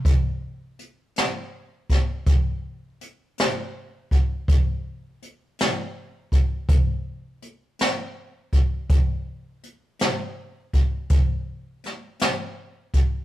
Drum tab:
HH |x-xx-xx-xx-x|x-xx-xx-xx-x|x-xx-xx-xx-x|
SD |---o-o---o--|---o-----o--|---o----oo--|
BD |o----oo----o|o----oo----o|o----oo----o|